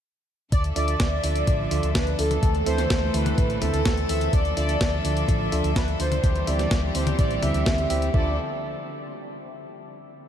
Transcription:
0.52 D2 D3 F3 A4 D5 E5, kick, closed hi-hat
0.64 closed hi-hat
0.76 D2 D3 D4 F4 A4 D5 E5, open hi-hat
0.88 closed hi-hat
1.00 D2, kick, snare, closed hi-hat
1.24 D2 D3 D4 F4 A4 D5 E5, open hi-hat
1.36 closed hi-hat
1.47 A1, kick, closed hi-hat
1.71 D2 D3 D4 F4 A4 E5, open hi-hat
1.83 D2, closed hi-hat
1.95 D2 B4, kick, snare, closed hi-hat
2.07 closed hi-hat
2.19 D2 D4 F4 A4 E5, open hi-hat
2.31 closed hi-hat, high tom
2.43 D2 E3 A3 C4, kick, closed hi-hat
2.55 closed hi-hat
2.66 D2 D3 C4 E4 A4 C5 E5, open hi-hat
2.78 snare, closed hi-hat
2.90 D2, kick, snare, closed hi-hat
3.14 D2 D3 C4 E4 A4 B4 E5, open hi-hat
3.26 closed hi-hat, high tom
3.38 A1, kick, closed hi-hat
3.50 closed hi-hat
3.62 D2 D3 C4 E4 A4 E5, open hi-hat, high tom
3.74 D2, closed hi-hat
3.86 D2, kick, snare, closed hi-hat
3.97 closed hi-hat
4.09 D2 C4 E4 A4 E5, open hi-hat
4.21 closed hi-hat
4.33 D2 D3 F3 D5 E5, kick, closed hi-hat
4.45 closed hi-hat
4.57 D2 D3 D4 F4 A4 D5 E5, open hi-hat
4.69 closed hi-hat
4.81 D2, kick, snare, closed hi-hat
5.04 D2 D3 D4 F4 A4 D5 E5, open hi-hat
5.17 closed hi-hat
5.28 A1, kick, closed hi-hat
5.52 D2 D3 D4 F4 A4 E5, open hi-hat
5.64 D2, closed hi-hat
5.76 D2 B4, kick, snare, closed hi-hat
5.88 closed hi-hat
6.00 D2 D4 F4 A4 C5 E5, open hi-hat
6.12 closed hi-hat, high tom
6.23 D2 E3 G3 C4 G4, kick, closed hi-hat
6.36 closed hi-hat
6.47 D2 D3 C4 E4 G4 D5 E5, open hi-hat
6.59 snare, closed hi-hat
6.71 D2, kick, snare, closed hi-hat
6.95 D2 D3 C4 E4 G4 C5 E5, open hi-hat
7.07 closed hi-hat, high tom
7.19 A1 D5, kick, closed hi-hat
7.31 closed hi-hat
7.42 D2 D3 C4 E4 G4 E5, open hi-hat, high tom
7.54 D2, closed hi-hat
7.66 D2, kick, snare, closed hi-hat
7.78 closed hi-hat
7.90 D2 C4 E4 G4 E5, open hi-hat
8.02 closed hi-hat
8.14 D2 D3 F3 D4 E4 F4 A4 D5 E5, kick

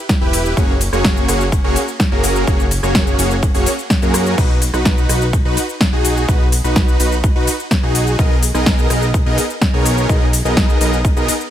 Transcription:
0.09 kick, snare, ride, shaker
0.21 E1 E4 G4 B4
0.33 open hi-hat, ride, shaker
0.46 shaker
0.57 F#1 A#3 C#4 F#4 G#4 C#5, kick, ride, shaker
0.81 open hi-hat, ride, shaker
0.93 F#1 A#3 C#4 F#4 G#4 C#5, cross-stick, shaker
1.04 kick, snare, ride, shaker
1.17 shaker
1.28 F#1 A#3 C#4 F#4 G#4 C#5, cross-stick, open hi-hat, ride, shaker
1.41 shaker
1.52 kick, ride, shaker
1.64 F#1 A#3 C#4 F#4 G#4 C#5
1.76 open hi-hat, ride, shaker
1.88 shaker
2.00 kick, snare, ride, shaker
2.12 F#1 A#3 C#4 F#4 G#4 A#4
2.24 open hi-hat, ride, shaker
2.36 shaker
2.47 F#1 A#3 C#4 F#4 G#4 C#5, kick, ride, shaker
2.60 shaker
2.71 open hi-hat, ride, shaker
2.83 F#1 A#3 C#4 F#4 G#4 C#5, cross-stick, shaker
2.95 kick, snare, ride, shaker
3.07 shaker
3.19 F#1 A#3 C#4 F#4 G#4 C#5, open hi-hat, ride, shaker
3.31 shaker
3.43 kick, ride, shaker
3.55 F#1 A#3 C#4 F#4 G#4 C#5, open hi-hat, shaker
3.66 open hi-hat, ride, shaker
3.79 shaker
3.90 kick, snare, ride, shaker
4.02 F#2 A#3 C#4 F#4 G#4 A#4, shaker
4.14 cross-stick, open hi-hat, ride, shaker
4.26 shaker
4.38 B1 D#4 F#4, kick, crash, ride, shaker
4.62 open hi-hat, ride, shaker
4.74 B1 D#4 F#4 B4, cross-stick, shaker
4.85 kick, snare, ride, shaker
4.98 shaker
5.09 B1 D#4 F#4 B4, cross-stick, open hi-hat, ride, shaker
5.22 shaker
5.33 kick, ride, shaker
5.45 B1 D#4 F#4 B4
5.57 open hi-hat, ride, shaker
5.69 shaker
5.81 kick, snare, ride, shaker
5.93 B1 D#4 F#4 G#4
6.05 open hi-hat, ride, shaker
6.17 shaker
6.29 B1 D#4 F#4 B4, kick, ride, shaker
6.52 open hi-hat, ride, shaker
6.64 B1 D#4 F#4 B4, shaker
6.76 kick, snare, ride, shaker
6.88 shaker
7.00 B1 D#4 F#4 B4, open hi-hat, ride, shaker
7.12 shaker
7.24 kick, ride, shaker
7.36 B1 D#4 F#4 B4
7.47 open hi-hat, ride, shaker
7.60 shaker
7.71 kick, snare, ride, shaker
7.83 B1 D#4 F#4 G#4
7.95 open hi-hat, ride, shaker
8.07 shaker
8.19 B1 B3 D#4 G#4 A#4 D#5, kick, ride, shaker
8.43 open hi-hat, ride, shaker
8.55 B1 B3 D#4 G#4 A#4 D#5, cross-stick, shaker
8.66 kick, snare, ride, shaker
8.79 shaker
8.90 B1 B3 D#4 G#4 A#4 D#5, cross-stick, open hi-hat, ride, shaker
9.03 shaker
9.14 kick, ride, shaker
9.26 B1 B3 D#4 G#4 A#4 D#5
9.38 open hi-hat, ride, shaker
9.50 shaker
9.62 kick, snare, ride, shaker
9.74 B1 B3 D#4 G#4 A#4 C#5
9.86 open hi-hat, ride, shaker
9.98 shaker
10.09 B1 B3 D#4 G#4 A#4 D#5, kick, ride, shaker
10.33 open hi-hat, ride, shaker
10.45 B1 B3 D#4 G#4 A#4 D#5, shaker
10.57 kick, snare, ride, shaker
10.69 shaker
10.81 B1 B3 D#4 G#4 A#4 D#5, open hi-hat, ride, shaker
10.93 shaker
11.05 kick, ride, shaker
11.16 B1 B3 D#4 G#4 A#4 D#5, shaker
11.28 open hi-hat, ride, shaker
11.41 shaker

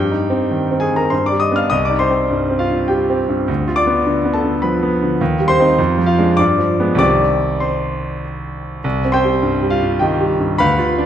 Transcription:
Already playing: G2 G4 G5
0.11 D#4
0.30 C4
0.51 D#3
0.71 C4
0.80 G#4 G#5
0.91 D#3
0.96 A#4 A#5
1.10 G2 C5 C6
1.26 D5 D6
1.32 G3
1.40 D#5 D#6
1.51 B3 D4
1.56 F5 F6
1.70 C2 D#5 D#6
1.85 D5 D6
1.90 D#4
1.99 C5 C6
2.10 C4
2.30 G2
2.50 C4
2.59 F4 F5
2.70 G2
2.88 G3 G4 G5
3.10 C4
3.29 G2
3.48 D2
3.68 F4
3.76 D5 D6
3.87 B3
4.07 D3
4.25 B3
4.33 A4 A5
4.44 D3
4.62 F3 B4 B5
4.83 B3
5.02 D3
5.21 D#2
5.40 G3
5.48 C5 C6
5.60 C4 D#4
5.79 F2
5.98 F3
6.06 F4 F5
6.18 G#3 D4
6.37 G2 D5 D6
6.58 F3
6.80 G#3 B3
6.95 C2 D#3 G3 C4 D6
7.00 D5
7.60 C5 C6
8.84 C2
9.05 C4
9.12 C5 G5 C6
9.24 G3
9.43 G2
9.62 G3
9.70 F4 F5
9.82 G2
9.99 D#3 G4 D#5 G5
10.20 G3
10.40 G2
10.58 D2 B4 F5 B5
10.78 F4
10.98 D4

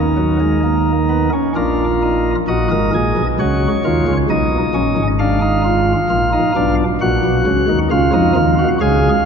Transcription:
Already playing: D#2 D#3 D#4 A#4
0.17 F#3
0.40 G#3
0.64 A#3
1.09 B3
1.33 C#4
1.56 A#1 A#2 D4 F4 A#4
2.02 D#4
2.48 A#1 A#2 F#4 D#5
2.71 G#1 G#2 A#4
2.94 A#1 A#2 G#4
3.17 B1 B2
3.39 C#2 C#3 F#4 C#5
3.85 D#2 D#3 F4
4.08 C#2 C#3
4.30 B1 B2 D#4 D#5
4.74 A#1 A#2 C#4
4.98 G#1 G#2
5.19 D4 F5
5.41 D#4
5.64 F4
6.10 A#1 A#2 F4
6.33 D#4
6.56 B1 B2 D4
7.01 A#1 A#2 F#4 F#5
7.24 B1 B2
7.46 C#2 C#3
7.68 D#2 D#3
7.91 C#2 C#3 F4 F5
8.13 F2 F3 D#4
8.35 D#2 D#3 F4
8.59 F#4
8.81 C#2 C#3 G#4 F5

